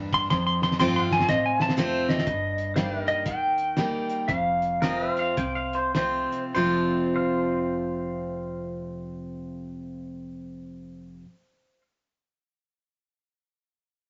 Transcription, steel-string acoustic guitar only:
0.00 0.28 G2 medium
0.30 1.25 F2 medium
0.79 1.26 F3 medium
0.79 1.27 A3 medium
0.79 1.27 C4 loud
0.79 1.27 F4 loud
1.28 2.23 C3 medium
1.77 2.24 F3 medium
1.77 2.25 A3 loud
1.77 2.25 C4 loud
1.77 2.25 F4 loud
2.27 3.22 G2 medium
2.76 3.24 G3 medium
2.76 3.24 A#3 medium
2.76 3.24 D#4 medium
2.76 3.25 G4 medium
3.26 4.25 D#3 medium
3.77 4.27 G3 medium
3.77 4.27 A#3 medium
3.77 4.27 D#4 medium
3.77 4.27 G4 medium
4.29 5.34 F2 medium
4.82 5.35 F3 medium
4.82 5.36 A3 medium
4.82 5.36 C4 medium
4.82 5.36 F4 medium
5.38 6.51 C3 medium
5.95 6.53 F3 medium
5.95 6.53 A3 medium
5.95 6.53 C4 medium
5.95 6.53 F4 medium
6.55 11.24 F2 medium
6.55 11.24 C3 medium
6.55 11.25 F3 medium
6.55 11.26 A3 medium
6.55 11.26 C4 medium
6.55 11.27 F4 medium

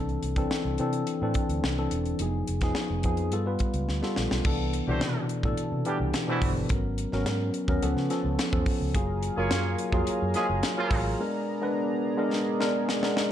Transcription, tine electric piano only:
0.00 0.31 E3 medium
0.00 0.31 C4 medium
0.00 0.31 D4 medium
0.00 0.31 A4 medium
0.37 0.73 E3 medium
0.37 0.74 C4 medium
0.37 0.74 D4 medium
0.37 0.74 A4 medium
0.79 1.16 E3 medium
0.79 1.16 C4 medium
0.79 1.16 D4 medium
0.79 1.17 A4 medium
1.22 1.70 E3 medium
1.22 1.71 C4 medium
1.22 1.71 D4 medium
1.22 1.71 A4 medium
1.78 2.14 E3 medium
1.78 2.15 C4 medium
1.78 2.15 D4 medium
1.78 2.15 A4 medium
2.21 2.57 F3 medium
2.21 2.57 B3 medium
2.21 2.57 D#4 medium
2.21 2.57 G#4 medium
2.62 2.99 F3 medium
2.62 2.99 B3 medium
2.62 2.99 D#4 medium
2.62 2.99 G#4 medium
3.04 3.32 F3 medium
3.04 3.32 B3 medium
3.04 3.33 D#4 medium
3.04 3.33 G#4 medium
3.32 3.45 G3 medium
3.32 3.45 B3 medium
3.32 3.45 F4 medium
3.32 3.45 A4 medium
3.46 3.95 G3 medium
3.46 3.96 B3 medium
3.46 3.96 F4 medium
3.46 3.96 B4 medium
4.02 4.39 G3 medium
4.02 4.40 B3 medium
4.02 4.40 F4 medium
4.02 4.40 A4 medium
4.45 4.82 E3 medium
4.45 4.82 B3 medium
4.45 4.82 D4 medium
4.45 4.82 A4 medium
4.88 5.36 B2 medium
4.88 5.36 E3 medium
4.88 5.37 D4 medium
4.88 5.37 F#4 medium
5.44 5.80 E3 medium
5.44 5.81 B3 medium
5.44 5.81 D4 medium
5.44 5.81 A4 medium
5.85 6.22 E3 medium
5.85 6.22 B3 medium
5.85 6.23 D4 medium
5.85 6.23 G4 medium
6.27 6.64 B2 medium
6.27 6.64 E3 medium
6.27 6.64 D4 medium
6.27 6.65 C5 medium
6.69 7.06 F#3 medium
6.69 7.07 B3 medium
6.69 7.07 C#4 medium
6.69 7.07 A#4 medium
7.12 7.61 F#3 medium
7.12 7.61 B3 medium
7.12 7.62 C#4 medium
7.12 7.62 A#4 medium
7.68 7.82 F#3 medium
7.68 7.81 B3 medium
7.68 7.82 C#4 medium
7.68 7.83 A#4 medium
7.82 8.07 F3 medium
7.82 8.07 B3 medium
7.82 8.07 C#4 medium
7.82 8.07 A4 medium
8.10 8.47 F3 medium
8.10 8.47 B3 medium
8.10 8.47 C#4 medium
8.10 8.47 A4 medium
8.52 8.89 F3 medium
8.52 8.89 B3 medium
8.52 8.89 C#4 medium
8.52 8.90 A4 medium
8.94 9.31 F#3 medium
8.94 9.31 A#3 medium
8.94 9.32 F4 medium
8.94 9.32 G#4 medium
9.37 9.86 F#3 medium
9.37 9.86 A#3 medium
9.37 9.86 F4 medium
9.37 9.86 A#4 loud
9.92 10.29 F#3 medium
9.92 10.29 A#3 medium
9.92 10.30 F4 medium
9.92 10.30 G#4 loud
10.36 10.72 F#3 medium
10.36 10.72 A#3 medium
10.36 10.72 F4 medium
10.36 10.73 G#4 medium
10.77 11.14 F#3 medium
10.77 11.14 A#3 medium
10.77 11.14 F4 medium
10.77 11.14 A#4 medium
11.19 11.56 G#3 medium
11.19 11.56 B3 medium
11.19 11.57 D4 medium
11.19 11.57 A#4 medium
11.61 12.10 G#3 medium
11.61 12.10 B3 medium
11.61 12.11 D4 medium
11.61 12.11 B4 loud
12.17 12.54 G#3 medium
12.17 12.54 B3 medium
12.17 12.54 D4 medium
12.17 12.55 A#4 loud
12.60 12.96 G#3 medium
12.60 12.97 B3 medium
12.60 12.97 D4 medium
12.60 12.97 A#4 medium
13.02 13.32 G#3 medium
13.02 13.32 B3 medium
13.02 13.32 D4 medium
13.02 13.32 A#4 medium

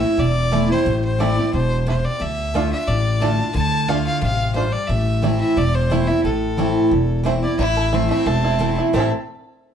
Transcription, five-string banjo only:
0.53 0.60 A3 medium
0.53 0.55 E4 medium
1.20 1.28 A3 medium
1.20 1.23 E4 medium
1.88 1.95 A3 medium
1.88 1.91 E4 medium
2.55 2.62 A3 medium
2.55 2.63 D4 medium
2.55 2.63 F4 medium
3.22 3.30 A3 medium
3.22 3.30 D4 medium
3.22 3.30 F4 medium
3.89 3.97 A3 medium
3.89 3.97 D4 medium
3.89 3.97 F4 medium
4.56 4.64 A3 medium
4.56 4.64 D4 medium
4.56 4.64 F4 medium
5.24 5.31 A3 medium
5.24 5.26 E4 medium
5.91 5.99 A3 medium
5.91 5.94 E4 medium
6.59 6.66 A3 medium
6.59 6.61 E4 medium
7.26 7.33 A3 medium
7.26 7.28 E4 medium
7.59 7.91 E4 medium
7.77 8.23 A4 medium
7.93 8.40 E4 medium
8.11 8.57 A3 medium
8.27 8.60 A4 medium
8.44 8.77 E4 medium
8.61 8.94 A4 medium
8.78 8.94 E4 medium
8.94 9.10 A3 medium
8.94 9.11 C4 medium
8.98 9.12 E4 medium
8.98 9.13 A4 medium

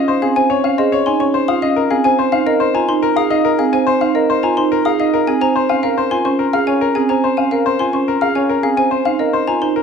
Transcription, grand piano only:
0.00 0.12 D#5 medium
0.08 0.26 C5 loud
0.22 0.40 G#4 medium
0.36 0.54 G#5 medium
0.50 0.68 C#5 loud
0.64 0.82 F5 medium
0.78 0.96 C5 medium
0.92 1.11 C#5 loud
1.07 1.25 G#5 medium
1.20 1.38 C#5 medium
1.34 1.52 C5 loud
1.48 1.67 F5 medium
1.62 1.81 D#5 medium
1.76 1.95 A#4 loud
1.91 2.09 G#4 medium
2.05 2.23 G#5 medium
2.19 2.37 C5 loud
2.32 2.51 F5 medium
2.46 2.65 A#4 medium
2.60 2.79 C5 loud
2.74 2.93 G#5 medium
2.88 3.07 C5 medium
3.03 3.21 A#4 loud
3.16 3.35 F5 medium
3.30 3.49 D#5 loud
3.45 3.63 A#4 loud
3.59 3.77 G#4 medium
3.73 3.91 G#5 medium
3.87 4.05 C5 loud
4.01 4.19 F5 medium
4.15 4.33 A#4 medium
4.30 4.47 C5 loud
4.43 4.61 G#5 medium
4.58 4.75 C5 medium
4.72 4.89 A#4 loud
4.86 5.03 F5 medium
5.00 5.17 D#5 medium
5.14 5.31 A#4 loud
5.28 5.46 G#4 medium
5.41 5.59 G#5 medium
5.56 5.73 C5 loud
5.70 5.87 F5 medium
5.83 6.01 A#4 medium
5.98 6.15 C5 loud
6.11 6.29 G#5 medium
6.25 6.43 C5 medium
6.39 6.57 A#4 loud
6.53 6.71 F5 medium
6.67 6.85 C#5 medium
6.81 6.99 A#4 loud
6.96 7.14 G#4 medium
7.10 7.28 G#5 medium
7.24 7.42 C5 loud
7.38 7.56 F5 medium
7.52 7.70 A#4 medium
7.66 7.84 C5 loud
7.80 7.98 G#5 medium
7.94 8.12 C5 medium
8.08 8.26 A#4 loud
8.22 8.40 F5 medium
8.36 8.54 C#5 medium
8.49 8.68 A#4 loud
8.63 8.81 G#4 medium
8.77 8.95 G#5 medium
8.91 9.09 C5 loud
9.06 9.24 F5 medium
9.20 9.38 A#4 medium
9.33 9.52 C5 loud
9.48 9.66 G#5 medium
9.62 9.80 C5 medium
9.76 9.83 A#4 loud

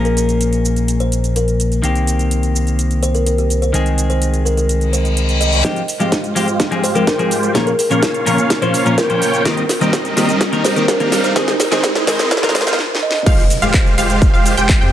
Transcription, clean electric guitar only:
0.00 1.80 A#2 medium
0.00 1.80 F3 medium
0.00 1.81 A#3 medium
0.00 1.81 C#4 medium
0.00 1.81 A#4 medium
1.82 3.71 D#3 medium
1.82 3.71 A#3 medium
1.82 3.71 C4 medium
1.82 3.72 G4 medium
3.73 5.61 D#3 medium
3.73 5.61 G#3 medium
3.73 5.62 C4 medium
3.73 5.62 G#4 medium
5.64 5.81 F3 medium
5.64 5.81 G#3 medium
5.64 5.82 C4 medium
5.64 5.82 G4 medium
6.00 6.11 F3 medium
6.00 6.11 G#3 medium
6.00 6.11 C4 medium
6.00 6.11 G4 medium
6.35 6.46 F3 medium
6.35 6.46 G#3 medium
6.35 6.47 C4 medium
6.35 6.47 G4 medium
6.71 6.82 F3 medium
6.71 6.82 G#3 medium
6.71 6.82 C4 medium
6.71 6.83 G#4 loud
6.95 7.06 F3 medium
6.95 7.06 G#3 medium
6.95 7.06 C4 medium
6.95 7.06 G4 medium
7.18 7.30 F3 medium
7.18 7.30 G#3 medium
7.18 7.30 C4 medium
7.18 7.30 G#4 medium
7.54 7.72 A#2 medium
7.54 7.72 F3 medium
7.54 7.72 A#3 medium
7.54 7.72 C#4 medium
7.54 7.72 A#4 medium
7.90 8.01 A#2 medium
7.90 8.01 F3 medium
7.90 8.01 A#3 medium
7.90 8.02 C#4 medium
7.90 8.02 A#4 medium
8.26 8.37 A#2 medium
8.26 8.37 F3 medium
8.26 8.37 A#3 medium
8.26 8.37 C#4 medium
8.26 8.37 A#4 loud
8.61 8.72 A#2 medium
8.61 8.73 F3 medium
8.61 8.73 A#3 medium
8.61 8.73 C#4 medium
8.61 8.73 C5 loud
8.85 8.96 A#2 medium
8.85 8.96 F3 medium
8.85 8.97 A#3 medium
8.85 8.97 C#4 medium
8.85 8.97 A#4 medium
9.09 9.20 A#2 medium
9.09 9.20 F3 medium
9.09 9.20 A#3 medium
9.09 9.21 C#4 medium
9.09 9.21 C5 medium
9.45 9.62 D#3 medium
9.45 9.62 A#3 medium
9.45 9.63 C4 medium
9.45 9.63 G4 medium
9.80 9.92 D#3 medium
9.80 9.92 A#3 medium
9.80 9.92 C4 medium
9.80 9.92 G4 medium
10.16 10.27 D#3 medium
10.16 10.27 A#3 medium
10.16 10.28 C4 medium
10.16 10.28 G4 loud
10.52 10.63 D#3 medium
10.52 10.63 A#3 medium
10.52 10.63 C4 medium
10.52 10.64 A#4 loud
10.76 10.87 D#3 medium
10.76 10.87 A#3 medium
10.76 10.87 C4 medium
10.76 10.87 G4 medium
11.00 11.11 D#3 medium
11.00 11.11 A#3 medium
11.00 11.11 C4 medium
11.00 11.11 A#4 loud
11.35 11.53 D#3 medium
11.35 11.53 G#3 medium
11.35 11.53 C4 medium
11.35 11.53 G#4 loud
11.71 11.82 D#3 medium
11.71 11.82 G#3 medium
11.71 11.82 C4 medium
11.71 11.83 G#4 medium
12.07 12.18 D#3 medium
12.07 12.18 G#3 medium
12.07 12.18 C4 medium
12.07 12.18 G#4 medium
12.42 12.53 D#3 medium
12.42 12.54 G#3 medium
12.42 12.54 C4 medium
12.42 12.54 A#4 loud

